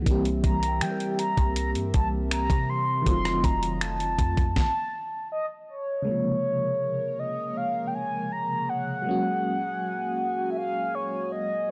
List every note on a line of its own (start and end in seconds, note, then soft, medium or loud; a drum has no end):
0.02 3.00 E3 medium
0.02 3.01 G3 medium
0.06 0.42 C2 loud
0.06 3.02 A#3 medium
0.06 3.03 C4 medium
0.06 3.03 G4 medium
0.06 3.03 A#4 medium
0.06 3.03 E5 medium
0.06 kick loud
0.06 closed hi-hat medium
0.11 3.05 G4 medium
0.25 closed hi-hat soft
0.44 0.83 C2 loud
0.44 2.69 E5 medium
0.44 0.84 A#5 medium
0.44 kick medium
0.44 closed hi-hat medium
0.63 closed hi-hat medium
0.68 2.91 G5 medium
0.81 1.35 G3 loud
0.81 1.19 G5 medium
0.81 finger snap loud
0.81 closed hi-hat medium
0.91 3.12 A#4 medium
1.00 closed hi-hat soft
1.19 1.54 A#5 medium
1.19 closed hi-hat medium
1.37 1.77 C2 loud
1.37 kick medium
1.37 closed hi-hat soft
1.56 1.71 A#5 loud
1.56 closed hi-hat medium
1.75 1.93 G2 loud
1.75 closed hi-hat soft
1.94 2.48 C2 loud
1.94 2.08 A5 loud
1.94 kick medium
1.94 closed hi-hat medium
2.31 2.71 A#5 loud
2.31 finger snap loud
2.31 closed hi-hat medium
2.50 3.04 C3 loud
2.50 kick medium
2.50 closed hi-hat medium
2.69 3.06 C6 loud
3.02 4.51 D#3 medium
3.02 4.52 F#3 medium
3.06 3.42 F1 loud
3.06 4.55 F#3 medium
3.06 4.53 A3 medium
3.06 4.55 A3 medium
3.06 4.54 C4 medium
3.06 4.55 F4 medium
3.06 4.55 D#5 medium
3.06 3.46 C6 loud
3.06 kick loud
3.06 closed hi-hat medium
3.11 4.56 F4 medium
3.25 cross-stick medium
3.25 closed hi-hat soft
3.44 4.16 F1 loud
3.44 3.83 A#5 loud
3.44 kick medium
3.44 closed hi-hat medium
3.63 closed hi-hat medium
3.81 4.57 A5 loud
3.81 finger snap loud
3.81 closed hi-hat medium
4.00 closed hi-hat soft
4.19 4.55 F2 loud
4.19 kick medium
4.19 closed hi-hat medium
4.37 kick medium
4.37 closed hi-hat soft
4.56 5.28 A5 medium
4.56 kick loud
4.56 snare medium
5.32 5.46 D#5 loud
5.69 7.21 C#5 loud
6.02 9.00 C#3 medium
6.02 9.02 G#3 medium
6.06 9.04 C3 medium
6.06 11.71 A#3 medium
6.06 9.03 A#3 medium
6.06 11.71 G#4 medium
6.06 9.03 A#4 loud
6.06 9.03 C#5 medium
6.11 9.05 F3 medium
7.19 7.58 D#5 loud
7.57 7.89 F5 loud
7.87 7.96 G5 medium
7.95 8.34 G#5 loud
8.32 8.71 A#5 loud
8.69 10.50 F#5 loud
9.02 11.71 F#3 medium
9.02 11.71 G#3 medium
9.06 11.71 A#3 medium
9.06 11.71 C#4 medium
9.06 11.71 F#4 medium
9.06 11.71 G#5 loud
9.11 11.71 F#4 medium
10.50 10.59 E5 medium
10.57 10.96 F5 loud
10.95 11.31 C#5 loud
11.32 11.71 D#5 loud